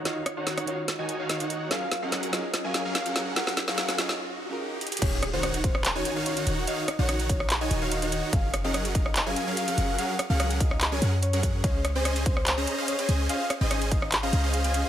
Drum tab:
CC |--------------------------------|--------------------------------|--------------------------------|x-------------------------------|
HH |x---x---x-x-x---x---x---x-x-x---|x---x---x-x-x---x---x---x-x-x---|x---x---x-x-x---------------xxxx|x---x---x-x-x---x---x---x-x-x---|
CP |--------------------------------|--------------------------------|--------------------------------|----------------x---------------|
SD |o---r---o-r-----o-------o-------|o---o---o---o---o---o---o---o---|o-o-o-o-o-o-o-o-----------------|----r---r-----r-----------------|
BD |--------------------------------|--------------------------------|--------------------------------|o-----------o-------------------|

CC |--------------------------------|--------------------------------|--------------------------------|--------------------------------|
HH |x---x---x-x-x---x---x---x-x-x---|x---x---x-x-x---x---x---x-x-x---|x---x---x-x-x---x---x---x-x-x---|x---x---x-x-x---x---x---x-x-x---|
CP |----------------x---------------|----------------x---------------|----------------x---------------|----------------x---------------|
SD |----r---r-----r-----------------|----r---r-----r-----------------|----r---r-----r-----------------|----r---r-----r-----------------|
BD |------------o-------------------|o-----------o-------------------|------------o---------------o---|o-----------o-------------------|

CC |--------------------------------|
HH |x---x---x-x-x---x---x---x-x-x---|
CP |----------------x---------------|
SD |----r---r-----r-----------------|
BD |------------o-------------------|